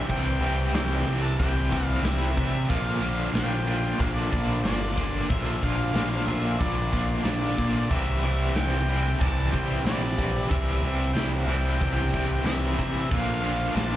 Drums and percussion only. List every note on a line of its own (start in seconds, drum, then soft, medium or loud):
0.09 kick loud
0.09 ride loud
0.42 ride medium
0.75 snare loud
0.75 ride loud
1.08 ride medium
1.40 kick loud
1.40 ride loud
1.72 kick medium
1.72 ride medium
2.05 snare loud
2.05 ride loud
2.37 kick medium
2.37 ride medium
2.70 kick loud
2.70 crash loud
3.02 ride medium
3.35 snare loud
3.35 ride loud
3.68 ride medium
4.00 kick loud
4.00 ride medium
4.33 kick medium
4.33 ride medium
4.65 snare loud
4.65 ride loud
4.97 kick medium
4.97 ride medium
5.30 kick loud
5.30 ride loud
5.63 kick medium
5.63 ride medium
5.95 snare loud
5.95 ride loud
6.28 ride medium
6.60 kick loud
6.60 ride loud
6.93 kick medium
6.93 ride medium
7.25 snare loud
7.25 ride loud
7.58 kick medium
7.58 ride medium
7.91 kick loud
7.91 crash loud
8.24 ride medium
8.56 snare loud
8.56 ride loud
8.89 ride medium
9.21 kick loud
9.21 ride medium
9.54 kick loud
9.54 ride medium
9.86 snare loud
9.86 ride loud
10.18 kick medium
10.18 ride medium
10.51 kick loud
10.51 ride medium
10.84 ride medium
11.16 snare loud
11.16 ride loud
11.49 ride medium
11.81 kick loud
11.81 ride loud
12.14 kick medium
12.14 ride medium
12.46 snare loud
12.46 ride loud
12.79 kick medium
12.79 ride medium
13.11 kick loud
13.11 crash loud
13.45 ride medium
13.77 snare loud
13.77 ride loud